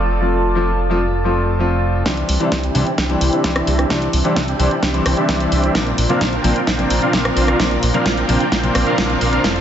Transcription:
Already playing: analog synth bass F1, grand piano F3 A3 C4 F4, analog synth pad F4 A4 D5 A5
0.21 grand piano F3 A3 C4 F4
0.55 grand piano F3 A3 C4 F4
0.90 grand piano F3 A3 C4 F4
1.24 grand piano F3 A3 C4 F4
1.59 grand piano F3 A3 C4 F4
2.05 analog synth bass C2, grand piano E3 G3 C4 D4, supersaw synth C4 D4 E4 G4 D5, analog synth pad E4 C5 D5 G5, kick, snare, closed hi-hat
2.17 closed hi-hat
2.29 analog synth bass C2, open hi-hat
2.40 grand piano E3 G3 C4 D4, supersaw synth C4 D4 E4 G4 E5, closed hi-hat
2.52 analog synth bass C2, kick, snare, closed hi-hat
2.63 supersaw synth C4 D4 E4 G4 G5, closed hi-hat
2.75 analog synth bass C2, grand piano E3 G3 C4 D4, open hi-hat
2.87 closed hi-hat
2.98 analog synth bass C2, supersaw synth C4 D4 E4 G4 G5, kick, snare, closed hi-hat
3.09 grand piano E3 G3 C4 D4, closed hi-hat
3.21 analog synth bass C2, open hi-hat
3.33 supersaw synth C4 D4 E4 G4 E5, closed hi-hat
3.44 analog synth bass C2, grand piano E3 G3 C4 D4, kick, snare, closed hi-hat
3.56 supersaw synth C4 D4 E4 G4 E5, cross-stick, closed hi-hat
3.67 analog synth bass C2, open hi-hat
3.79 cross-stick, closed hi-hat
3.90 analog synth bass C2, grand piano E3 G3 C4 D4, supersaw synth C4 D4 E4 G4 D5, analog synth pad A5, kick, snare, closed hi-hat
4.02 closed hi-hat
4.13 analog synth bass C2, open hi-hat
4.24 grand piano E3 G3 C4 D4, supersaw synth C4 D4 E4 G4 E5, closed hi-hat
4.36 analog synth bass C2, kick, snare, closed hi-hat
4.48 supersaw synth C4 D4 E4 G4 G5, closed hi-hat
4.59 analog synth bass C2, grand piano E3 G3 C4 D4, open hi-hat
4.83 analog synth bass C2, supersaw synth C4 D4 E4 G4 G5, kick, snare, closed hi-hat
4.94 grand piano E3 G3 C4 D4, closed hi-hat
5.06 analog synth bass C2, cross-stick, open hi-hat
5.17 supersaw synth C4 D4 E4 G4 E5, closed hi-hat
5.28 analog synth bass C2, grand piano E3 G3 C4 D4, kick, snare, closed hi-hat
5.40 supersaw synth C4 D4 E4 G4 E5, closed hi-hat
5.52 analog synth bass C2, open hi-hat
5.63 closed hi-hat
5.74 analog synth bass A#1, grand piano A#2 F3 A#3 C4 D4, supersaw synth C4 D4 F4 A#4 D5, analog synth pad F4 A#5, kick, snare, closed hi-hat
5.87 closed hi-hat
5.98 analog synth bass A#1, open hi-hat
6.09 grand piano A#2 F3 A#3 C4 D4, supersaw synth C4 D4 F4 A#4 F5, closed hi-hat
6.21 analog synth bass A#1, kick, snare, closed hi-hat
6.33 supersaw synth C4 D4 F4 A#4 G5, closed hi-hat
6.44 analog synth bass A#1, grand piano A#2 F3 A#3 C4 D4, open hi-hat
6.56 closed hi-hat
6.67 analog synth bass A#1, supersaw synth C4 D4 F4 A#4 G5, kick, snare, closed hi-hat
6.78 grand piano A#2 F3 A#3 C4 D4, closed hi-hat
6.90 analog synth bass A#1, open hi-hat
7.02 supersaw synth C4 D4 F4 A#4 F5, closed hi-hat
7.13 analog synth bass A#1, grand piano A#2 F3 A#3 C4 D4, kick, snare, closed hi-hat
7.25 supersaw synth C4 D4 F4 A#4 F5, cross-stick, closed hi-hat
7.37 analog synth bass A#1, open hi-hat
7.48 cross-stick, closed hi-hat
7.59 analog synth bass A#1, grand piano A#2 F3 A#3 C4 D4, supersaw synth C4 D4 F4 A#4 D5, kick, snare, closed hi-hat
7.71 closed hi-hat
7.83 analog synth bass A#1, open hi-hat
7.94 grand piano A#2 F3 A#3 C4 D4, supersaw synth C4 D4 F4 A#4 F5, closed hi-hat
8.06 analog synth bass A#1, kick, snare, closed hi-hat
8.17 supersaw synth C4 D4 F4 A#4 G5, closed hi-hat
8.28 analog synth bass A#1, grand piano A#2 F3 A#3 C4 D4, open hi-hat
8.40 closed hi-hat
8.52 analog synth bass A#1, supersaw synth C4 D4 F4 A#4 G5, kick, snare, closed hi-hat
8.63 grand piano A#2 F3 A#3 C4 D4, closed hi-hat
8.75 analog synth bass A#1, cross-stick, open hi-hat
8.87 supersaw synth C4 D4 F4 A#4 F5, closed hi-hat
8.97 analog synth bass A#1, grand piano A#2 F3 A#3 C4 D4, kick, snare, closed hi-hat
9.10 supersaw synth C4 D4 F4 A#4 F5, closed hi-hat
9.21 analog synth bass A#1, open hi-hat
9.33 closed hi-hat
9.44 analog synth bass F1, grand piano F3 A3 C4 F4, supersaw synth F4 A4 C5, analog synth pad A4 A5, kick, snare, closed hi-hat, riser
9.56 closed hi-hat

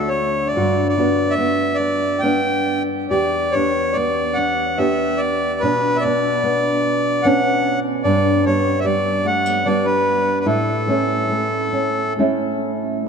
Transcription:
Already playing: nylon-string guitar D2 A3 D4 F#4
0.08 accordion C#5
0.47 accordion D5
0.56 nylon-string guitar G2 F#4
0.89 accordion D5
0.98 nylon-string guitar B3 D4 F#4
1.30 accordion E5
1.38 nylon-string guitar B3
1.74 accordion D5
1.80 nylon-string guitar D4
2.19 nylon-string guitar B3, accordion G5
2.24 nylon-string guitar D4
3.10 nylon-string guitar E2 G4, accordion D5
3.52 nylon-string guitar B3 D4, accordion C#5
3.56 nylon-string guitar G4
3.93 nylon-string guitar B3, accordion D5
4.33 nylon-string guitar D4, accordion F#5
4.77 nylon-string guitar B3 D4 G4, accordion E5
5.17 accordion D5
5.60 nylon-string guitar B2 D4, accordion B4
5.96 accordion D5 E5
6.05 nylon-string guitar B3 D4
6.44 nylon-string guitar B3
7.23 nylon-string guitar B3 C#4 D4, accordion F#5
8.03 nylon-string guitar G2 D4, accordion D5
8.45 nylon-string guitar G3 B3 D4, accordion C#5
8.80 accordion E5
8.84 nylon-string guitar G3, accordion D5
9.25 nylon-string guitar A3, accordion F#5
9.46 nylon-string guitar B3
9.66 nylon-string guitar G3 B3 D4, accordion D5
9.85 accordion B4
10.40 accordion B4
10.46 nylon-string guitar A2 E4, accordion A4
10.88 nylon-string guitar A3 C#4 E4
11.30 nylon-string guitar A3
11.73 nylon-string guitar C#4
12.19 nylon-string guitar A3 C#4 E4

